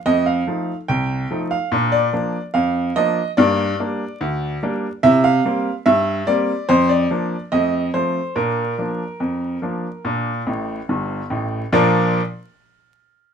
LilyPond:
<<
  \new Staff \with { instrumentName = "Upright piano" } { \time 2/4 \key bes \major \tempo 4 = 72 ees''16 f''8. g''8. f''16~ | f''16 d''8. f''8 ees''8 | d''2 | e''16 f''8. e''8 d''8 |
c''16 d''8. ees''8 c''8 | bes'2~ | bes'4 r4 | <bes, f d' f' bes' d''>8 r4. | }
  \new Staff \with { instrumentName = "Upright piano" } { \clef bass \time 2/4 \key bes \major <f, a>8 <f a ees'>8 c,8 <f a ees'>8 | <bes, d'>8 <f bes d'>8 f,8 <f bes d'>8 | <g, bes>8 <g bes d'>8 d,8 <g bes d'>8 | <c e'>8 <g bes c'>8 g,8 <g bes c'>8 |
f,8 <f bes d'>8 <f, a>8 <f a c'>8 | <bes, d'>8 <f bes d'>8 f,8 <f bes d'>8 | <bes, d'>8 <a,, a,>8 <g,, g,>8 <a,, a,>8 | r2 | }
>>